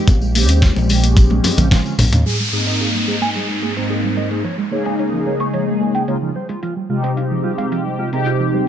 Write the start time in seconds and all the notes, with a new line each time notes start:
0.08 A#1 F3, kick, closed hi-hat, tambourine, muted conga
0.21 G#3, tambourine
0.34 G#3 A#3 C4 C#4 G4, open hi-hat, tambourine, muted conga
0.49 D#2 C#4, closed hi-hat, tambourine
0.62 F4, kick, snare, closed hi-hat, tambourine
0.76 A#1 F3, tambourine, muted conga
0.89 G#3, open hi-hat, tambourine
1.03 A#3, closed hi-hat, tambourine, muted conga
1.16 F3, kick, closed hi-hat, high tom, tambourine
1.30 G#3, high tom, high conga
1.44 F4, open hi-hat, tambourine, muted conga, low conga
1.57 A#1 F3, closed hi-hat, mid tom, tambourine, high conga, low conga
1.70 F3 G#3 C4 C#4 F4, kick, snare, closed hi-hat, mid tom, tambourine, muted conga
1.84 G#3 C4 C#4 F4, tambourine
1.98 A#1 G#3, mid tom, open hi-hat, tambourine, high conga, low conga
2.12 D#2 C#4, closed hi-hat, mid tom, tambourine, muted conga
2.26 G3 G#4, closed hi-hat, downlifter
2.40 G#3
2.51 G#2 A#3 C4 D#4 G#4
2.67 C4 D#5, closed hi-hat
2.80 D#4 G#4, closed hi-hat
2.94 G3
3.08 G#3 G#4
3.21 A#3 G#5, closed hi-hat
3.35 G3 G#4, closed hi-hat
3.49 G#3
3.62 A#3 G#4
3.75 G#2 A#3 C4 D#4 C5, closed hi-hat
3.90 D#4 G#4, closed hi-hat
4.04 G3
4.17 G#3 D#5
4.31 A#3 G#4, closed hi-hat
4.44 F3 C#5, closed hi-hat
4.58 G#3
4.71 C#3 G#3 A#3 D#4 G#4 C#5
4.85 C#4 G#5, closed hi-hat
4.99 D#4 C#5, closed hi-hat
5.13 F3
5.26 G#3 C#5
5.40 A#3 C#6, closed hi-hat
5.54 F3 C#5, closed hi-hat
5.68 G#3
5.81 A#3 C#5
5.95 C#4 G5, closed hi-hat
6.07 C#3 G#3 A#3 D#4 F4 C#5, closed hi-hat
6.21 C#3 F3 G#3 A#3 D#4 F4
6.35 G3 C5
6.49 G#3 F4, closed hi-hat
6.63 F3 F4, closed hi-hat
6.76 G3
6.89 C3 G#3 C4 D#4 F4 G4
7.04 C4 C5, closed hi-hat
7.17 D#4 F4, closed hi-hat
7.31 F3
7.44 G3 F4
7.58 G#3 F5, closed hi-hat
7.72 F3 F4, closed hi-hat
7.85 G3
7.99 G#3 F4
8.12 C3 G#3 C4 D#4 G4 A#4, closed hi-hat
8.26 D#4 F4, closed hi-hat
8.40 F3
8.54 G3 C5